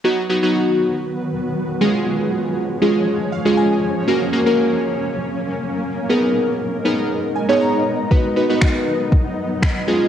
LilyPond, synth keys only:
\new Staff \with { instrumentName = "Synth keys" } { \time 4/4 \key b \major \tempo 4 = 119 << { r1 | r2 r8 eis''8 gis''4 | r1 | r2 r8 gis''8 ais''4 |
r1 | } \\ { <fis b dis' fis'>16 r16 <fis b dis' fis'>16 <fis b dis' fis'>4 r4. r16 <gis cis' eis' gis'>8~ | <gis cis' eis' gis'>4 r8 <gis cis' eis' gis'>8. r8 <gis cis' eis' gis'>8. r8 | <ais cis' fis' ais'>16 r16 <ais cis' fis' ais'>16 <ais cis' fis' ais'>4 r2 r16 | <b dis' gis' ais'>8. r8. <b dis' gis' ais'>8. r8 <b dis' gis' cis''>8. r8 |
<b dis' fis' b'>16 r16 <b dis' fis' b'>16 <b dis' fis' b'>4 r4. r16 <gis cis' eis' gis'>8 | } >> }